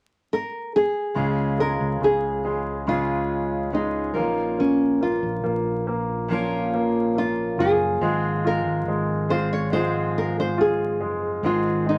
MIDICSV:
0, 0, Header, 1, 5, 480
1, 0, Start_track
1, 0, Key_signature, -5, "major"
1, 0, Tempo, 857143
1, 648, Time_signature, 4, 2, 24, 8
1, 6709, End_track
2, 0, Start_track
2, 0, Title_t, "Nylon-string guitar"
2, 0, Program_c, 0, 24
2, 185, Note_on_c, 0, 70, 74
2, 423, Note_off_c, 0, 70, 0
2, 425, Note_on_c, 0, 68, 72
2, 874, Note_off_c, 0, 68, 0
2, 898, Note_on_c, 0, 70, 67
2, 1140, Note_off_c, 0, 70, 0
2, 1143, Note_on_c, 0, 68, 71
2, 1615, Note_off_c, 0, 68, 0
2, 1617, Note_on_c, 0, 65, 66
2, 2070, Note_off_c, 0, 65, 0
2, 2097, Note_on_c, 0, 63, 56
2, 2573, Note_off_c, 0, 63, 0
2, 2575, Note_on_c, 0, 61, 62
2, 2795, Note_off_c, 0, 61, 0
2, 2814, Note_on_c, 0, 65, 55
2, 3749, Note_off_c, 0, 65, 0
2, 4022, Note_on_c, 0, 65, 65
2, 4255, Note_off_c, 0, 65, 0
2, 4257, Note_on_c, 0, 68, 75
2, 4740, Note_off_c, 0, 68, 0
2, 4742, Note_on_c, 0, 70, 67
2, 5207, Note_off_c, 0, 70, 0
2, 5209, Note_on_c, 0, 72, 76
2, 5332, Note_off_c, 0, 72, 0
2, 5335, Note_on_c, 0, 73, 68
2, 5443, Note_off_c, 0, 73, 0
2, 5448, Note_on_c, 0, 72, 78
2, 5695, Note_off_c, 0, 72, 0
2, 5700, Note_on_c, 0, 70, 65
2, 5818, Note_off_c, 0, 70, 0
2, 5823, Note_on_c, 0, 72, 70
2, 5928, Note_off_c, 0, 72, 0
2, 5940, Note_on_c, 0, 68, 71
2, 6414, Note_off_c, 0, 68, 0
2, 6416, Note_on_c, 0, 65, 69
2, 6635, Note_off_c, 0, 65, 0
2, 6658, Note_on_c, 0, 63, 66
2, 6709, Note_off_c, 0, 63, 0
2, 6709, End_track
3, 0, Start_track
3, 0, Title_t, "Steel-string acoustic guitar"
3, 0, Program_c, 1, 25
3, 641, Note_on_c, 1, 49, 55
3, 647, Note_on_c, 1, 56, 63
3, 649, Note_on_c, 1, 61, 61
3, 653, Note_on_c, 1, 65, 59
3, 655, Note_on_c, 1, 68, 70
3, 1356, Note_off_c, 1, 68, 0
3, 1363, Note_on_c, 1, 68, 35
3, 1364, Note_off_c, 1, 49, 0
3, 1367, Note_off_c, 1, 56, 0
3, 1370, Note_off_c, 1, 65, 0
3, 1372, Note_on_c, 1, 65, 31
3, 1377, Note_off_c, 1, 61, 0
3, 1379, Note_on_c, 1, 61, 28
3, 1604, Note_off_c, 1, 61, 0
3, 1605, Note_off_c, 1, 68, 0
3, 1605, Note_on_c, 1, 49, 53
3, 1607, Note_off_c, 1, 65, 0
3, 1607, Note_on_c, 1, 56, 53
3, 1610, Note_on_c, 1, 61, 56
3, 1613, Note_on_c, 1, 65, 60
3, 1616, Note_on_c, 1, 68, 61
3, 2074, Note_off_c, 1, 56, 0
3, 2080, Note_on_c, 1, 56, 39
3, 2086, Note_off_c, 1, 49, 0
3, 2086, Note_off_c, 1, 61, 0
3, 2088, Note_on_c, 1, 61, 42
3, 2090, Note_off_c, 1, 68, 0
3, 2091, Note_off_c, 1, 65, 0
3, 2093, Note_on_c, 1, 65, 39
3, 2096, Note_on_c, 1, 68, 38
3, 2314, Note_off_c, 1, 68, 0
3, 2315, Note_off_c, 1, 65, 0
3, 2316, Note_on_c, 1, 70, 46
3, 2321, Note_off_c, 1, 61, 0
3, 2321, Note_on_c, 1, 65, 44
3, 2324, Note_off_c, 1, 56, 0
3, 2327, Note_on_c, 1, 61, 43
3, 2333, Note_on_c, 1, 58, 38
3, 2338, Note_on_c, 1, 53, 41
3, 2341, Note_on_c, 1, 46, 34
3, 3512, Note_off_c, 1, 46, 0
3, 3519, Note_on_c, 1, 46, 67
3, 3522, Note_off_c, 1, 70, 0
3, 3524, Note_off_c, 1, 53, 0
3, 3524, Note_off_c, 1, 58, 0
3, 3526, Note_on_c, 1, 53, 65
3, 3527, Note_off_c, 1, 61, 0
3, 3531, Note_on_c, 1, 58, 62
3, 3535, Note_on_c, 1, 61, 69
3, 3538, Note_off_c, 1, 65, 0
3, 3540, Note_on_c, 1, 65, 64
3, 3544, Note_on_c, 1, 70, 72
3, 4483, Note_off_c, 1, 46, 0
3, 4486, Note_off_c, 1, 53, 0
3, 4487, Note_on_c, 1, 44, 47
3, 4488, Note_off_c, 1, 58, 0
3, 4489, Note_on_c, 1, 53, 49
3, 4490, Note_off_c, 1, 61, 0
3, 4491, Note_on_c, 1, 56, 54
3, 4493, Note_off_c, 1, 65, 0
3, 4493, Note_on_c, 1, 60, 61
3, 4494, Note_off_c, 1, 70, 0
3, 4495, Note_on_c, 1, 65, 67
3, 4496, Note_on_c, 1, 68, 56
3, 5200, Note_off_c, 1, 68, 0
3, 5202, Note_on_c, 1, 68, 40
3, 5203, Note_off_c, 1, 65, 0
3, 5207, Note_off_c, 1, 44, 0
3, 5208, Note_off_c, 1, 53, 0
3, 5210, Note_off_c, 1, 60, 0
3, 5210, Note_on_c, 1, 65, 36
3, 5213, Note_on_c, 1, 60, 31
3, 5217, Note_off_c, 1, 56, 0
3, 5220, Note_on_c, 1, 56, 27
3, 5438, Note_on_c, 1, 44, 53
3, 5442, Note_off_c, 1, 56, 0
3, 5445, Note_off_c, 1, 68, 0
3, 5446, Note_on_c, 1, 53, 59
3, 5448, Note_off_c, 1, 60, 0
3, 5449, Note_off_c, 1, 65, 0
3, 5449, Note_on_c, 1, 56, 58
3, 5455, Note_on_c, 1, 60, 59
3, 5458, Note_on_c, 1, 65, 65
3, 5463, Note_on_c, 1, 68, 60
3, 6395, Note_off_c, 1, 44, 0
3, 6402, Note_off_c, 1, 53, 0
3, 6402, Note_off_c, 1, 56, 0
3, 6402, Note_on_c, 1, 44, 51
3, 6404, Note_on_c, 1, 51, 54
3, 6404, Note_on_c, 1, 56, 56
3, 6406, Note_off_c, 1, 60, 0
3, 6408, Note_off_c, 1, 65, 0
3, 6408, Note_on_c, 1, 60, 55
3, 6410, Note_off_c, 1, 68, 0
3, 6410, Note_on_c, 1, 63, 56
3, 6412, Note_on_c, 1, 68, 55
3, 6709, Note_off_c, 1, 44, 0
3, 6709, Note_off_c, 1, 51, 0
3, 6709, Note_off_c, 1, 56, 0
3, 6709, Note_off_c, 1, 60, 0
3, 6709, Note_off_c, 1, 63, 0
3, 6709, Note_off_c, 1, 68, 0
3, 6709, End_track
4, 0, Start_track
4, 0, Title_t, "Grand piano"
4, 0, Program_c, 2, 0
4, 646, Note_on_c, 2, 49, 44
4, 740, Control_c, 2, 64, 127
4, 887, Note_on_c, 2, 56, 37
4, 1120, Note_off_c, 2, 49, 0
4, 1128, Note_on_c, 2, 49, 39
4, 1361, Note_off_c, 2, 56, 0
4, 1370, Note_on_c, 2, 56, 45
4, 1602, Note_off_c, 2, 49, 0
4, 1610, Note_on_c, 2, 49, 46
4, 2082, Note_off_c, 2, 56, 0
4, 2091, Note_on_c, 2, 56, 44
4, 2307, Note_off_c, 2, 49, 0
4, 2322, Note_off_c, 2, 56, 0
4, 2326, Note_on_c, 2, 58, 50
4, 2336, Control_c, 2, 64, 0
4, 2436, Control_c, 2, 64, 127
4, 2560, Note_off_c, 2, 58, 0
4, 2569, Note_on_c, 2, 58, 37
4, 2797, Note_off_c, 2, 58, 0
4, 2805, Note_on_c, 2, 58, 41
4, 3036, Note_off_c, 2, 58, 0
4, 3044, Note_on_c, 2, 58, 42
4, 3279, Note_off_c, 2, 58, 0
4, 3287, Note_on_c, 2, 58, 46
4, 3764, Note_off_c, 2, 58, 0
4, 3772, Note_on_c, 2, 58, 42
4, 3997, Note_off_c, 2, 58, 0
4, 4005, Note_on_c, 2, 58, 38
4, 4250, Note_on_c, 2, 65, 51
4, 4472, Note_off_c, 2, 58, 0
4, 4482, Note_off_c, 2, 65, 0
4, 4488, Note_on_c, 2, 56, 52
4, 4496, Control_c, 2, 64, 0
4, 4579, Control_c, 2, 64, 127
4, 4730, Note_on_c, 2, 65, 40
4, 4965, Note_off_c, 2, 56, 0
4, 4974, Note_on_c, 2, 56, 42
4, 5205, Note_off_c, 2, 65, 0
4, 5213, Note_on_c, 2, 65, 47
4, 5441, Note_off_c, 2, 56, 0
4, 5449, Note_on_c, 2, 56, 43
4, 5916, Note_off_c, 2, 65, 0
4, 5924, Note_on_c, 2, 65, 43
4, 6155, Note_off_c, 2, 56, 0
4, 6163, Note_on_c, 2, 56, 39
4, 6392, Note_off_c, 2, 65, 0
4, 6398, Note_off_c, 2, 56, 0
4, 6409, Note_on_c, 2, 56, 49
4, 6415, Control_c, 2, 64, 0
4, 6510, Control_c, 2, 64, 127
4, 6635, Note_off_c, 2, 56, 0
4, 6643, Note_on_c, 2, 56, 40
4, 6709, Note_off_c, 2, 56, 0
4, 6709, End_track
5, 0, Start_track
5, 0, Title_t, "Fingered electric bass"
5, 0, Program_c, 3, 33
5, 650, Note_on_c, 3, 37, 73
5, 987, Note_off_c, 3, 37, 0
5, 1011, Note_on_c, 3, 37, 68
5, 1119, Note_off_c, 3, 37, 0
5, 1123, Note_on_c, 3, 37, 64
5, 2322, Note_off_c, 3, 37, 0
5, 2322, Note_on_c, 3, 34, 69
5, 2903, Note_off_c, 3, 34, 0
5, 2927, Note_on_c, 3, 34, 63
5, 3039, Note_off_c, 3, 34, 0
5, 3046, Note_on_c, 3, 34, 57
5, 4224, Note_off_c, 3, 34, 0
5, 4243, Note_on_c, 3, 30, 68
5, 4469, Note_off_c, 3, 30, 0
5, 4485, Note_on_c, 3, 32, 76
5, 4824, Note_off_c, 3, 32, 0
5, 4845, Note_on_c, 3, 32, 65
5, 4958, Note_off_c, 3, 32, 0
5, 4962, Note_on_c, 3, 32, 66
5, 6168, Note_off_c, 3, 32, 0
5, 6168, Note_on_c, 3, 30, 63
5, 6391, Note_off_c, 3, 30, 0
5, 6400, Note_on_c, 3, 32, 78
5, 6709, Note_off_c, 3, 32, 0
5, 6709, End_track
0, 0, End_of_file